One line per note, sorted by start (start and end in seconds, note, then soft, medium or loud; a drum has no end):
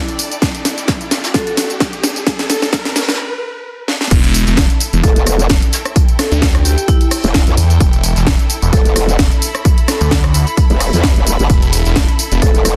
0.00 0.15 E4 medium
0.00 3.19 E4 medium
0.00 3.19 A4 medium
0.00 3.19 D5 medium
0.00 3.19 G5 medium
0.00 riser medium
0.08 closed hi-hat medium
0.08 tambourine soft
0.19 closed hi-hat medium
0.19 open hi-hat loud
0.19 tambourine medium
0.32 closed hi-hat soft
0.32 tambourine soft
0.42 kick loud
0.42 snare medium
0.42 closed hi-hat medium
0.42 tambourine soft
0.55 closed hi-hat soft
0.55 tambourine soft
0.65 snare medium
0.65 closed hi-hat medium
0.65 open hi-hat loud
0.65 tambourine medium
0.77 snare soft
0.77 closed hi-hat soft
0.77 tambourine soft
0.88 kick loud
0.88 snare loud
0.88 snare medium
0.88 closed hi-hat medium
0.88 tambourine soft
1.01 closed hi-hat soft
1.01 tambourine soft
1.11 snare loud
1.11 snare medium
1.11 closed hi-hat medium
1.11 open hi-hat loud
1.11 tambourine medium
1.24 snare loud
1.24 closed hi-hat soft
1.24 closed hi-hat medium
1.24 tambourine soft
1.34 1.42 A4 medium
1.34 kick loud
1.34 snare medium
1.34 closed hi-hat medium
1.34 tambourine soft
1.47 1.54 A4 medium
1.47 closed hi-hat soft
1.47 tambourine soft
1.57 snare medium
1.57 closed hi-hat medium
1.57 open hi-hat loud
1.57 tambourine medium
1.70 closed hi-hat soft
1.70 tambourine soft
1.80 kick loud
1.80 snare loud
1.80 snare medium
1.80 closed hi-hat medium
1.80 tambourine soft
1.93 closed hi-hat medium
1.93 tambourine soft
2.04 snare medium
2.04 closed hi-hat medium
2.04 open hi-hat loud
2.04 tambourine medium
2.16 closed hi-hat soft
2.16 tambourine soft
2.27 kick loud
2.27 snare loud
2.27 closed hi-hat medium
2.27 tambourine soft
2.39 snare medium
2.39 closed hi-hat medium
2.39 tambourine soft
2.50 2.62 A4 medium
2.50 snare medium
2.50 closed hi-hat medium
2.50 open hi-hat loud
2.50 tambourine medium
2.62 snare medium
2.62 closed hi-hat soft
2.62 tambourine soft
2.72 kick loud
2.72 snare loud
2.72 snare medium
2.72 closed hi-hat medium
2.72 tambourine soft
2.85 snare medium
2.85 closed hi-hat soft
2.85 tambourine soft
2.96 snare medium
2.96 snare loud
2.96 closed hi-hat medium
2.96 open hi-hat loud
2.96 tambourine medium
3.01 snare medium
3.01 closed hi-hat medium
3.08 snare medium
3.08 closed hi-hat soft
3.08 closed hi-hat medium
3.08 tambourine soft
3.13 snare medium
3.13 closed hi-hat medium
3.88 snare medium
4.01 snare medium
4.11 4.45 E1 medium
4.11 12.76 E4 medium
4.11 kick loud
4.11 closed hi-hat medium
4.11 tambourine soft
4.11 crash loud
4.24 closed hi-hat medium
4.24 tambourine soft
4.34 closed hi-hat medium
4.34 open hi-hat loud
4.34 tambourine medium
4.42 12.76 A4 medium
4.46 4.68 E1 loud
4.46 snare soft
4.46 closed hi-hat soft
4.46 tambourine soft
4.57 kick loud
4.57 snare loud
4.57 closed hi-hat medium
4.57 tambourine soft
4.70 closed hi-hat medium
4.70 tambourine soft
4.80 closed hi-hat medium
4.80 open hi-hat loud
4.80 tambourine medium
4.93 5.02 E1 loud
4.93 closed hi-hat soft
4.93 tambourine soft
5.04 5.48 E1 loud
5.04 5.12 A4 medium
5.04 kick loud
5.04 closed hi-hat medium
5.04 tambourine soft
5.16 5.23 A4 medium
5.16 closed hi-hat medium
5.16 tambourine soft
5.26 cross-stick medium
5.26 closed hi-hat medium
5.26 open hi-hat loud
5.26 tambourine medium
5.34 9.06 G5 medium
5.39 closed hi-hat soft
5.39 tambourine soft
5.49 5.60 E1 loud
5.49 kick loud
5.49 snare loud
5.49 closed hi-hat medium
5.49 tambourine soft
5.62 closed hi-hat medium
5.62 tambourine soft
5.72 snare loud
5.72 closed hi-hat medium
5.72 open hi-hat loud
5.72 tambourine medium
5.85 cross-stick medium
5.85 closed hi-hat soft
5.85 tambourine soft
5.95 kick loud
5.95 closed hi-hat medium
5.95 tambourine soft
6.09 closed hi-hat medium
6.09 tambourine soft
6.19 6.31 A4 medium
6.19 cross-stick medium
6.19 snare medium
6.19 closed hi-hat medium
6.19 open hi-hat loud
6.19 tambourine medium
6.32 6.76 D2 loud
6.32 closed hi-hat soft
6.32 tambourine soft
6.42 kick loud
6.42 snare loud
6.42 closed hi-hat medium
6.42 tambourine soft
6.54 cross-stick medium
6.54 closed hi-hat soft
6.54 closed hi-hat medium
6.54 tambourine soft
6.65 6.73 G4 medium
6.65 closed hi-hat medium
6.65 open hi-hat loud
6.65 tambourine medium
6.78 6.84 G4 medium
6.78 closed hi-hat soft
6.78 tambourine soft
6.88 7.53 E4 medium
6.88 kick loud
6.88 closed hi-hat medium
6.88 tambourine soft
7.01 closed hi-hat medium
7.01 tambourine soft
7.11 cross-stick medium
7.11 open hi-hat medium
7.11 open hi-hat loud
7.11 tambourine medium
7.24 7.45 E1 loud
7.24 closed hi-hat soft
7.24 tambourine soft
7.34 kick loud
7.34 snare loud
7.34 closed hi-hat medium
7.34 tambourine soft
7.47 7.56 E2 loud
7.47 closed hi-hat medium
7.47 tambourine soft
7.57 7.79 E2 loud
7.57 closed hi-hat medium
7.57 open hi-hat loud
7.57 tambourine medium
7.70 closed hi-hat soft
7.70 tambourine soft
7.80 8.14 E1 loud
7.80 kick loud
7.80 closed hi-hat medium
7.80 tambourine soft
7.93 closed hi-hat medium
7.93 tambourine soft
8.04 closed hi-hat medium
8.04 open hi-hat loud
8.04 tambourine medium
8.16 8.37 E1 loud
8.16 snare soft
8.16 closed hi-hat soft
8.16 tambourine soft
8.27 kick loud
8.27 snare loud
8.27 closed hi-hat medium
8.27 tambourine soft
8.39 closed hi-hat medium
8.39 tambourine soft
8.49 closed hi-hat medium
8.49 open hi-hat loud
8.49 tambourine medium
8.62 8.71 E1 loud
8.62 closed hi-hat soft
8.62 tambourine soft
8.73 9.17 E1 loud
8.73 8.81 A4 medium
8.73 kick loud
8.73 closed hi-hat medium
8.73 closed hi-hat loud
8.73 tambourine soft
8.85 8.92 A4 medium
8.85 closed hi-hat medium
8.85 tambourine soft
8.96 cross-stick medium
8.96 closed hi-hat medium
8.96 open hi-hat loud
8.96 tambourine medium
9.03 12.75 B5 medium
9.09 closed hi-hat soft
9.09 tambourine soft
9.19 9.30 E1 loud
9.19 kick loud
9.19 snare loud
9.19 closed hi-hat medium
9.19 tambourine soft
9.32 closed hi-hat medium
9.32 tambourine soft
9.42 closed hi-hat medium
9.42 open hi-hat loud
9.42 tambourine medium
9.55 cross-stick medium
9.55 closed hi-hat soft
9.55 tambourine soft
9.65 kick loud
9.65 closed hi-hat medium
9.65 tambourine soft
9.78 closed hi-hat medium
9.78 tambourine soft
9.88 10.01 A4 medium
9.88 cross-stick medium
9.88 snare medium
9.88 closed hi-hat medium
9.88 open hi-hat loud
9.88 tambourine medium
10.01 10.45 D2 loud
10.01 closed hi-hat soft
10.01 tambourine soft
10.11 kick loud
10.11 snare loud
10.11 closed hi-hat medium
10.11 tambourine soft
10.24 cross-stick medium
10.24 closed hi-hat soft
10.24 tambourine soft
10.34 closed hi-hat medium
10.34 open hi-hat loud
10.34 tambourine medium
10.47 closed hi-hat soft
10.47 tambourine soft
10.57 kick loud
10.57 closed hi-hat medium
10.57 tambourine soft
10.70 10.91 E1 loud
10.70 closed hi-hat medium
10.70 tambourine soft
10.80 cross-stick medium
10.80 open hi-hat medium
10.80 open hi-hat loud
10.80 tambourine medium
10.93 11.14 E2 loud
10.93 closed hi-hat soft
10.93 tambourine soft
11.03 kick loud
11.03 snare loud
11.03 closed hi-hat medium
11.03 tambourine soft
11.16 11.37 E1 loud
11.16 closed hi-hat medium
11.16 tambourine soft
11.26 closed hi-hat medium
11.26 open hi-hat loud
11.26 tambourine medium
11.39 11.48 G1 medium
11.39 closed hi-hat soft
11.39 tambourine soft
11.50 11.83 E1 loud
11.50 kick loud
11.50 closed hi-hat medium
11.50 tambourine soft
11.62 closed hi-hat medium
11.62 tambourine soft
11.73 closed hi-hat medium
11.73 open hi-hat loud
11.73 tambourine medium
11.85 12.07 E1 loud
11.85 snare soft
11.85 closed hi-hat soft
11.85 tambourine soft
11.95 kick loud
11.95 snare loud
11.95 closed hi-hat medium
11.95 tambourine soft
12.09 closed hi-hat medium
12.09 tambourine soft
12.19 closed hi-hat medium
12.19 open hi-hat loud
12.19 tambourine medium
12.32 12.40 E1 loud
12.32 closed hi-hat soft
12.32 tambourine soft
12.42 12.76 E1 loud
12.42 12.50 A4 medium
12.42 kick loud
12.42 closed hi-hat medium
12.42 tambourine soft
12.55 12.61 A4 medium
12.55 closed hi-hat medium
12.55 tambourine soft
12.65 cross-stick medium
12.65 closed hi-hat medium
12.65 open hi-hat loud
12.65 tambourine medium
12.72 12.76 G5 medium